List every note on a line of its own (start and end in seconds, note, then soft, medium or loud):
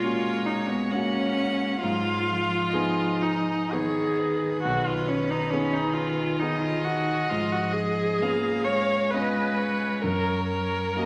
0.00 1.84 A#2 medium
0.00 1.80 G#3 medium
0.00 0.89 A#3 soft
0.00 0.89 C#4 soft
0.00 0.47 F4 medium
0.00 0.89 F#4 soft
0.00 0.93 C#5 medium
0.46 0.70 D#4 medium
0.69 0.92 B3 medium
0.91 1.79 A#3 soft
0.91 1.80 C#4 medium
0.91 1.79 C#4 soft
0.91 1.79 F#4 soft
0.91 1.81 F#5 medium
1.81 2.71 G#2 medium
1.81 2.29 F#3 medium
1.81 3.23 F4 loud
1.81 2.71 F5 medium
2.28 3.76 F3 medium
2.73 3.69 B3 soft
2.73 3.69 D#4 soft
2.73 3.70 G#4 soft
2.73 3.75 D#5 medium
3.22 3.74 D#4 medium
3.72 4.66 D#3 medium
3.72 4.61 B3 soft
3.72 4.61 D#4 soft
3.72 4.62 G#4 medium
3.72 4.61 G#4 soft
3.72 4.20 C#5 medium
4.18 6.41 B4 medium
4.63 5.51 B1 medium
4.63 4.88 F#4 medium
4.67 7.28 D#3 medium
4.87 5.09 F4 medium
5.08 5.32 C#4 medium
5.30 5.52 D#4 medium
5.51 6.38 B3 soft
5.51 5.75 C#4 medium
5.51 6.38 D#4 soft
5.51 6.38 G#4 soft
5.73 5.95 D#4 medium
5.94 6.41 F4 medium
6.40 7.27 B3 soft
6.40 6.62 D#4 medium
6.40 7.27 D#4 soft
6.40 7.27 G#4 soft
6.40 8.23 D#5 medium
6.62 6.86 F4 medium
6.84 7.31 F#4 medium
7.30 8.18 G#2 medium
7.30 8.22 F3 medium
7.30 7.54 F4 medium
7.52 7.75 F#4 medium
7.74 8.66 G#4 medium
8.20 8.68 A#3 medium
8.20 9.08 B3 soft
8.20 9.08 C#4 soft
8.20 9.08 F4 soft
8.20 9.15 F5 medium
8.65 10.04 G#3 medium
8.65 9.12 C#5 medium
9.11 9.99 B3 soft
9.11 9.99 C#4 soft
9.11 9.99 F4 soft
9.11 10.03 B4 medium
9.11 9.59 D#5 medium
9.57 10.03 C#5 medium
10.02 10.93 F#2 medium
10.02 10.96 F#3 medium
10.02 10.47 A#4 medium
10.02 10.99 C#5 medium
10.48 11.05 A#4 medium
10.95 11.05 F#3 soft
10.95 11.05 A#3 soft
10.95 11.05 C#4 soft
10.95 11.05 F#4 soft
10.95 11.05 D#5 medium